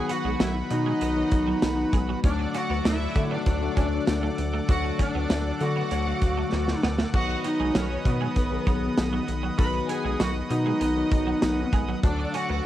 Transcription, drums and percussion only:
0.10 closed hi-hat medium
0.40 snare loud
0.40 closed hi-hat loud
0.40 tambourine medium
0.71 closed hi-hat medium
1.01 closed hi-hat medium
1.32 kick medium
1.32 closed hi-hat medium
1.62 snare loud
1.62 closed hi-hat loud
1.62 tambourine medium
1.93 kick loud
1.93 closed hi-hat medium
2.24 kick loud
2.24 closed hi-hat medium
2.54 closed hi-hat medium
2.85 snare loud
2.85 closed hi-hat loud
2.85 tambourine medium
3.16 kick loud
3.16 closed hi-hat medium
3.46 kick medium
3.46 closed hi-hat medium
3.77 kick medium
3.77 closed hi-hat medium
4.07 snare loud
4.07 closed hi-hat loud
4.07 tambourine medium
4.38 closed hi-hat medium
4.69 kick loud
4.69 closed hi-hat medium
4.99 kick medium
4.99 closed hi-hat medium
5.30 snare loud
5.30 closed hi-hat loud
5.30 tambourine medium
5.61 closed hi-hat medium
5.91 closed hi-hat medium
6.22 kick medium
6.22 closed hi-hat medium
6.52 snare medium
6.68 snare medium
6.83 snare loud
6.98 snare loud
7.14 kick loud
7.14 crash medium
7.44 closed hi-hat medium
7.75 snare loud
7.75 closed hi-hat loud
7.75 tambourine medium
8.05 kick loud
8.05 closed hi-hat medium
8.36 kick medium
8.36 closed hi-hat medium
8.67 kick medium
8.67 closed hi-hat medium
8.97 snare loud
8.97 closed hi-hat loud
8.97 tambourine medium
9.28 closed hi-hat medium
9.59 kick loud
9.59 closed hi-hat medium
9.89 closed hi-hat medium
10.20 snare loud
10.20 closed hi-hat loud
10.20 tambourine medium
10.50 closed hi-hat medium
10.81 closed hi-hat medium
11.12 kick medium
11.12 closed hi-hat medium
11.42 snare loud
11.42 closed hi-hat loud
11.42 tambourine medium
11.73 kick loud
11.73 closed hi-hat medium
12.03 kick loud
12.03 closed hi-hat medium
12.34 closed hi-hat medium

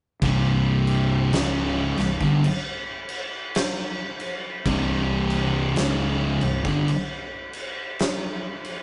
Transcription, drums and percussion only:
0.22 kick loud
0.22 crash medium
0.87 crash medium
1.33 snare loud
1.33 crash medium
1.97 snare soft
1.97 crash medium
2.21 kick loud
2.44 crash medium
3.09 crash medium
3.55 snare loud
3.55 crash medium
4.20 crash medium
4.65 kick loud
4.65 crash medium
5.30 crash medium
5.76 snare loud
5.76 crash medium
6.41 crash medium
6.65 kick loud
6.88 crash medium
7.53 crash medium
7.99 snare loud
7.99 crash medium
8.64 crash medium

